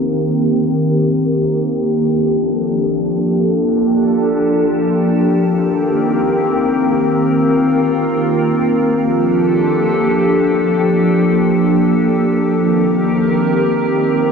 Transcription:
0.00 1.79 D#3 medium
0.00 5.37 A#3 medium
0.00 1.79 C4 medium
0.00 5.37 G4 medium
0.00 1.79 A#4 medium
1.82 5.37 F3 medium
1.82 5.37 D4 medium
1.82 5.37 A4 medium
5.40 8.95 D#3 medium
5.40 14.32 A#3 medium
5.40 8.95 C4 medium
5.40 7.18 G4 medium
5.40 8.95 A#4 medium
7.20 8.97 F4 medium
8.99 12.53 F3 medium
8.99 12.53 D4 medium
8.99 12.53 G4 medium
8.99 12.53 A4 medium
12.57 14.32 D#3 medium
12.57 14.32 C4 medium
12.57 14.32 G4 medium
12.57 14.32 A#4 medium

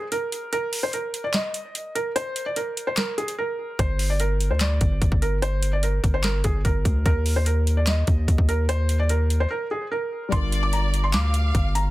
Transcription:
0.12 0.50 A#4 medium
0.12 closed hi-hat medium
0.32 closed hi-hat medium
0.53 0.81 A#4 loud
0.53 closed hi-hat medium
0.73 open hi-hat medium
0.83 0.91 C5 medium
0.93 1.22 A#4 medium
0.93 closed hi-hat medium
1.14 closed hi-hat medium
1.24 1.32 D5 medium
1.33 1.92 D#5 medium
1.33 snare loud
1.33 clap medium
1.33 closed hi-hat medium
1.54 closed hi-hat medium
1.75 closed hi-hat medium
1.95 2.11 A#4 medium
1.95 closed hi-hat medium
2.16 2.45 C5 loud
2.16 closed hi-hat medium
2.36 closed hi-hat medium
2.46 2.54 D5 medium
2.56 2.85 A#4 medium
2.56 closed hi-hat medium
2.77 closed hi-hat medium
2.87 2.95 C5 medium
2.97 3.13 A#4 medium
2.97 snare loud
2.97 clap medium
2.97 closed hi-hat medium
3.18 3.33 G#4 medium
3.18 closed hi-hat soft
3.28 closed hi-hat medium
3.38 3.77 A#4 medium
3.79 4.52 G1 loud
3.79 4.08 C5 loud
3.79 kick loud
3.79 closed hi-hat medium
3.99 open hi-hat medium
4.10 4.18 D5 medium
4.20 4.49 A#4 medium
4.20 closed hi-hat medium
4.41 closed hi-hat medium
4.51 4.80 D2 loud
4.51 4.58 C5 medium
4.60 5.18 D5 medium
4.60 snare loud
4.60 clap medium
4.60 closed hi-hat medium
4.81 5.01 G1 loud
4.81 kick medium
4.81 closed hi-hat medium
5.02 5.11 G1 loud
5.02 kick medium
5.02 closed hi-hat medium
5.12 6.00 G1 loud
5.12 kick medium
5.22 5.37 A#4 medium
5.22 closed hi-hat medium
5.42 5.71 C5 loud
5.42 closed hi-hat medium
5.63 closed hi-hat medium
5.73 5.81 D5 medium
5.83 6.12 A#4 medium
5.83 closed hi-hat medium
6.04 6.43 G1 loud
6.04 kick medium
6.04 closed hi-hat medium
6.14 6.22 C5 medium
6.23 6.40 A#4 loud
6.23 snare loud
6.23 clap medium
6.23 closed hi-hat medium
6.44 6.64 G1 loud
6.44 6.60 G#4 medium
6.44 kick medium
6.44 closed hi-hat medium
6.65 6.84 G1 loud
6.65 7.03 A#4 medium
6.65 kick medium
6.65 closed hi-hat medium
6.85 7.05 D2 loud
6.85 kick medium
6.85 closed hi-hat medium
7.06 8.04 D#2 loud
7.06 7.34 A#4 loud
7.06 kick loud
7.06 closed hi-hat medium
7.26 open hi-hat medium
7.36 7.44 C5 medium
7.46 7.75 A#4 medium
7.46 closed hi-hat medium
7.67 closed hi-hat medium
7.77 7.85 D5 medium
7.87 8.45 D#5 medium
7.87 snare loud
7.87 clap medium
7.87 closed hi-hat medium
8.07 8.27 D#2 loud
8.07 kick medium
8.07 closed hi-hat medium
8.28 8.38 D#2 loud
8.28 kick medium
8.28 closed hi-hat medium
8.38 9.47 D#2 loud
8.38 kick medium
8.49 8.64 A#4 medium
8.49 closed hi-hat medium
8.69 8.98 C5 loud
8.69 closed hi-hat medium
8.89 closed hi-hat medium
9.00 9.07 D5 medium
9.09 9.39 A#4 medium
9.09 closed hi-hat medium
9.30 closed hi-hat medium
9.40 9.48 C5 medium
9.50 9.66 A#4 medium
9.71 9.87 G#4 medium
9.91 10.30 A#4 medium
10.29 11.15 G1 loud
10.29 11.90 G3 medium
10.29 11.90 D4 medium
10.29 11.10 D5 loud
10.29 10.61 C6 loud
10.29 kick loud
10.29 closed hi-hat medium
10.33 11.90 F4 medium
10.33 11.90 A#4 medium
10.52 closed hi-hat medium
10.63 10.71 D6 medium
10.73 11.02 A#5 medium
10.73 closed hi-hat medium
10.94 closed hi-hat medium
11.04 11.11 C6 medium
11.13 11.53 D2 loud
11.13 11.90 F5 medium
11.13 11.71 D6 medium
11.13 snare loud
11.13 clap medium
11.13 closed hi-hat medium
11.34 closed hi-hat medium
11.55 11.90 G1 loud
11.55 kick medium
11.55 closed hi-hat medium
11.75 11.90 A#5 medium
11.75 closed hi-hat medium

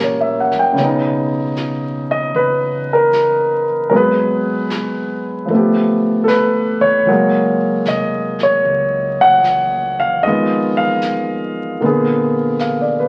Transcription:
0.00 0.48 A#1 medium
0.00 0.74 E3 soft
0.00 0.76 G3 soft
0.00 0.77 A#3 soft
0.00 0.75 C#4 soft
0.00 0.80 F#4 soft
0.00 0.80 G4 soft
0.00 0.80 A#4 soft
0.00 0.04 C#5 medium
0.00 0.39 C#5 soft
0.20 0.54 E5 soft
0.40 0.63 F#5 soft
0.52 0.76 F#2 medium
0.52 snare soft
0.59 0.86 G5 soft
0.72 2.30 B1 medium
0.72 3.90 C#3 soft
0.77 3.92 B3 soft
0.77 3.92 C#4 soft
0.77 brush sweep soft
0.77 snare soft
0.84 3.95 D#4 soft
1.56 snare soft
1.56 hi-hat pedal soft
2.11 2.34 D#5 medium
2.34 3.88 F#1 medium
2.34 2.91 B4 medium
2.34 brush sweep soft
2.93 3.66 A#4 medium
3.13 snare soft
3.13 hi-hat pedal soft
3.90 5.45 G#1 medium
3.90 5.49 F#3 soft
3.90 5.50 G#3 soft
3.90 5.50 B3 soft
3.90 3.93 A#4 soft
3.90 brush sweep soft
3.96 5.52 G#4 soft
3.96 6.22 B4 medium
4.70 snare soft
4.70 hi-hat pedal soft
5.45 6.78 G1 medium
5.45 7.06 F3 soft
5.45 brush sweep soft
5.50 7.08 A3 soft
5.50 7.10 B3 soft
5.56 7.11 G4 soft
6.24 6.29 A4 medium
6.24 6.84 B4 medium
6.28 snare soft
6.28 hi-hat pedal soft
6.81 7.05 G1 medium
6.81 7.57 C#5 medium
7.05 7.82 F#1 medium
7.05 10.23 F#3 soft
7.05 10.24 G#3 soft
7.05 10.24 A#3 soft
7.05 10.24 F#4 soft
7.05 brush sweep soft
7.85 8.61 F1 medium
7.85 8.38 D#5 medium
7.85 snare soft
7.85 hi-hat pedal soft
8.39 snare soft
8.43 9.17 C#5 medium
8.65 10.19 C#2 medium
8.65 brush sweep soft
9.21 9.95 F#5 medium
9.44 snare soft
9.44 hi-hat pedal soft
10.00 10.25 F5 medium
10.23 11.77 F2 medium
10.23 11.81 D#3 soft
10.23 11.82 G#3 soft
10.23 10.73 D#5 medium
10.23 brush sweep soft
10.27 11.82 B3 soft
10.27 11.83 F4 soft
10.77 12.59 F5 medium
11.02 snare soft
11.02 hi-hat pedal soft
11.80 13.08 A#1 medium
11.80 13.08 D3 soft
11.80 13.08 A#3 soft
11.80 13.08 B3 soft
11.80 brush sweep soft
11.85 13.08 G#4 soft
12.59 12.97 F5 soft
12.59 snare soft
12.59 hi-hat pedal soft
12.82 13.08 D5 soft
13.00 13.08 B4 soft

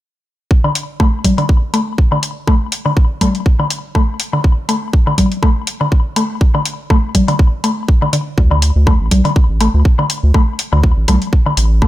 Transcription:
0.51 kick loud
0.64 0.69 D3 medium
0.64 low woodblock soft
0.75 open hi-hat medium
1.00 1.06 A3 medium
1.00 kick loud
1.00 low woodblock soft
1.24 kick medium
1.24 open hi-hat medium
1.24 low conga medium
1.38 1.43 D3 medium
1.38 open hi-hat soft
1.38 low woodblock soft
1.49 kick loud
1.74 1.80 A3 medium
1.74 open hi-hat medium
1.74 low woodblock soft
1.98 kick loud
2.12 2.17 D3 medium
2.12 low woodblock soft
2.23 open hi-hat medium
2.47 2.53 A3 medium
2.47 kick loud
2.47 low woodblock soft
2.72 open hi-hat medium
2.86 2.90 D3 medium
2.86 low woodblock soft
2.97 kick loud
3.21 3.27 A3 medium
3.21 kick medium
3.21 open hi-hat medium
3.21 low conga medium
3.21 low woodblock soft
3.35 open hi-hat soft
3.46 kick loud
3.59 3.64 D3 medium
3.59 low woodblock soft
3.70 open hi-hat medium
3.95 4.01 A3 medium
3.95 kick loud
3.95 low woodblock soft
4.20 open hi-hat medium
4.33 4.38 D3 medium
4.33 low woodblock soft
4.44 kick loud
4.69 4.75 A3 medium
4.69 open hi-hat medium
4.69 low woodblock soft
4.93 kick loud
5.07 5.12 D3 medium
5.07 low woodblock soft
5.18 kick medium
5.18 open hi-hat medium
5.18 low conga medium
5.32 open hi-hat soft
5.43 5.49 A3 medium
5.43 kick loud
5.43 low woodblock soft
5.67 open hi-hat medium
5.81 5.86 D3 medium
5.81 low woodblock soft
5.92 kick loud
6.16 6.22 A3 medium
6.16 open hi-hat medium
6.16 low woodblock soft
6.41 kick loud
6.55 6.59 D3 medium
6.55 low woodblock soft
6.65 open hi-hat medium
6.90 6.96 A3 medium
6.90 kick loud
6.90 low woodblock soft
7.15 kick medium
7.15 open hi-hat medium
7.15 low conga medium
7.28 7.33 D3 medium
7.28 open hi-hat soft
7.28 low woodblock soft
7.39 kick loud
7.64 7.70 A3 medium
7.64 open hi-hat medium
7.64 low woodblock soft
7.88 kick loud
8.02 8.05 D3 medium
8.02 low woodblock soft
8.13 8.17 D3 medium
8.13 open hi-hat medium
8.38 8.72 D2 medium
8.38 kick loud
8.51 8.56 D3 medium
8.51 low woodblock soft
8.62 open hi-hat medium
8.76 8.95 D2 medium
8.87 8.93 A3 medium
8.87 kick loud
8.87 low woodblock soft
9.00 9.09 A1 medium
9.11 9.22 C2 medium
9.11 kick medium
9.11 open hi-hat medium
9.11 low conga medium
9.25 9.30 D3 medium
9.25 open hi-hat soft
9.25 low woodblock soft
9.36 kick loud
9.50 9.69 A1 medium
9.61 9.67 A3 medium
9.61 open hi-hat medium
9.61 low woodblock soft
9.74 9.83 D2 medium
9.85 kick loud
9.99 10.04 D3 medium
9.99 low woodblock soft
10.10 open hi-hat medium
10.23 10.32 D2 medium
10.34 10.40 A3 medium
10.34 kick loud
10.34 low woodblock soft
10.59 open hi-hat medium
10.73 10.92 D2 medium
10.73 10.77 D3 medium
10.73 low woodblock soft
10.84 kick loud
10.97 11.06 A1 medium
11.08 11.19 C2 medium
11.08 11.14 A3 medium
11.08 kick medium
11.08 open hi-hat medium
11.08 low conga medium
11.08 low woodblock soft
11.22 open hi-hat soft
11.33 kick loud
11.46 11.51 D3 medium
11.46 low woodblock soft
11.57 11.88 A1 medium
11.57 open hi-hat medium
11.82 11.88 A3 medium
11.82 kick loud
11.82 low woodblock soft

